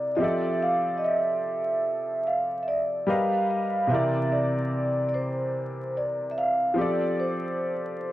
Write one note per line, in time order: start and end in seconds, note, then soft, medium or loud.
0.00 0.14 C3 medium
0.00 0.15 C4 medium
0.00 0.16 E4 medium
0.00 0.17 A#4 medium
0.00 0.17 D5 loud
0.00 0.18 D5 medium
0.15 3.02 F3 medium
0.15 3.03 C4 medium
0.15 0.20 D#5 medium
0.20 3.03 G4 medium
0.20 3.04 A4 medium
0.20 3.05 D5 medium
0.20 0.58 E5 medium
0.63 0.94 F5 medium
0.98 1.03 D#5 medium
1.04 2.30 E5 medium
2.27 2.62 F5 medium
2.63 2.67 E5 medium
2.68 3.09 D5 medium
3.06 3.89 G3 medium
3.06 3.89 G4 medium
3.06 3.90 A#4 medium
3.06 3.90 B4 medium
3.06 3.91 D#5 medium
3.06 3.47 F5 medium
3.06 3.91 F5 medium
3.50 3.92 F5 medium
3.87 6.72 C3 medium
3.87 6.74 E3 medium
3.87 6.73 C4 medium
3.87 4.32 E5 medium
3.93 6.75 A#4 medium
3.93 6.76 D5 medium
4.32 5.07 D5 medium
5.09 5.14 D5 medium
5.14 5.98 C5 medium
5.97 6.32 D5 medium
6.31 6.36 E5 medium
6.38 6.79 F5 medium
6.74 8.12 F3 medium
6.74 8.12 C4 medium
6.74 8.12 G4 medium
6.79 8.12 A4 medium
6.79 7.20 D5 medium
6.79 8.12 D5 medium
7.20 8.12 C5 medium